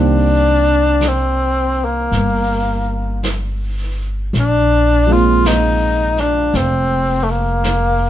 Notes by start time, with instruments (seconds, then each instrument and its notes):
Already playing: upright bass C2, grand piano D#3 G3 A#3 C4 D4 F5, tenor saxophone D4
1.01 brush sweep, snare, hi-hat pedal
1.08 tenor saxophone C4
1.85 tenor saxophone A#3
2.11 upright bass G1, brush sweep, snare
3.23 brush sweep, snare, hi-hat pedal
4.33 upright bass A#1, brush sweep, snare
4.40 tenor saxophone D4
5.06 grand piano F3 G#3 A#3
5.11 grand piano C4 F4, tenor saxophone F4
5.45 tenor saxophone D#4, brush sweep, snare, hi-hat pedal
6.17 tenor saxophone D4, snare
6.54 upright bass F1, tenor saxophone C4, brush sweep, snare
7.24 tenor saxophone A3
7.30 tenor saxophone A#3
7.64 brush sweep, snare, hi-hat pedal